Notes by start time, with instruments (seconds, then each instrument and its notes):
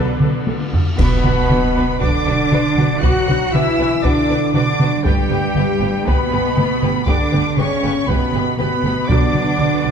Already playing: cello section D3, trombone section F#3 D4, french horn section B3, viola section A4 D5, violin section B4, flute B4
0.21 double bass section B1, viola section A4, taiko mid
0.47 double bass section B1, viola section A4, taiko high
0.73 double bass section B1, viola section A4, taiko low
0.97 double bass section B1, trombone section B2, cello section B3, french horn section B3, viola section B3 D4, violin section F#4 B4 B5, flute B4, concert bass drum, taiko, crash
1.24 double bass section B1, viola section B3 D4, violin section F#4 B4, taiko mid
1.49 double bass section B1, viola section B3 D4, violin section F#4 B4, taiko mid
1.75 double bass section B1, viola section B3 D4, violin section F#4 B4
2.00 double bass section B1, trombone section D3, viola section B3 D4, cello section D4, french horn section D4, violin section F#4 B4 D6, flute D5, taiko
2.26 double bass section B1, viola section B3 D4, violin section F#4 B4
2.51 double bass section B1, viola section B3 D4, violin section F#4 B4, taiko mid
2.76 double bass section B1, viola section B3 D4, violin section F#4 B4, taiko mid
3.01 double bass section B1, trombone section F#3, viola section B3 D4, cello section F#4, french horn section F#4, violin section F#4 B4 F#6, flute F#5, taiko
3.27 double bass section B1, viola section B3 D4, violin section F#4 B4, taiko mid
3.52 double bass section B1, trombone section E3, viola section B3 D4, cello section E4, french horn section E4, violin section F#4 B4 E6, flute E5, taiko mid
3.77 double bass section B1, viola section B3 D4, violin section F#4 B4
4.02 double bass section B1, trombone section D3, viola section B3 D4, cello section D4, french horn section D4, violin section F#4 B4 D6, flute D5, taiko
4.29 double bass section B1, viola section B3 D4, violin section F#4 B4
4.52 double bass section B1, trombone section D3, viola section B3 D4, cello section D4, french horn section D4, violin section F#4 B4 D6, flute D5, taiko mid
4.79 double bass section B1, viola section B3 D4, violin section F#4 B4, taiko mid
5.04 double bass section G1, trombone section G2, cello section G3, french horn section G3, viola section A3 B3, flute G4, violin section G4 B4 G5, taiko
5.30 double bass section G1, viola section A3 B3, violin section G4 B4, taiko mid
5.56 double bass section G1, viola section A3 B3, violin section G4 B4, taiko mid
5.80 double bass section G1, viola section A3 B3, violin section G4 B4
6.05 double bass section G1, trombone section B2, viola section A3 B3, french horn section B3, cello section B3, violin section G4 B4 B5, flute B4, taiko
6.32 double bass section G1, viola section A3 B3, violin section G4 B4
6.57 double bass section G1, viola section A3 B3, violin section G4 B4, taiko mid
6.82 double bass section G1, viola section A3 B3, violin section G4 B4, taiko mid
7.07 double bass section G1, trombone section D3, viola section A3 B3, cello section D4, french horn section D4, violin section G4 B4 D6, flute D5, taiko
7.32 double bass section G1, viola section A3 B3, violin section G4 B4, taiko mid
7.56 double bass section G1, trombone section C#3, viola section A3 B3, french horn section C#4, cello section C#4, violin section G4 B4 C#6, flute C#5, taiko mid
7.83 double bass section G1, viola section A3 B3, violin section G4 B4
8.06 double bass section G1, trombone section B2, viola section A3 B3, french horn section B3, cello section B3, violin section G4 B4 B5, flute B4, taiko
8.32 double bass section G1, viola section A3 B3, violin section G4 B4
8.57 double bass section G1, trombone section B2, viola section A3 B3, cello section B3, french horn section B3, violin section G4 B4 B5, flute B4, taiko mid
8.83 double bass section G1, viola section A3 B3, violin section G4 B4, taiko mid
9.08 double bass section B1, timpani B2, trombone section D3, viola section F#3 B3, cello section D4, french horn section D4, violin section F#4 B4 D6, flute D5, taiko
9.33 double bass section B1, viola section F#3, taiko mid
9.59 double bass section B1, viola section F#3, taiko mid
9.84 double bass section B1, viola section F#3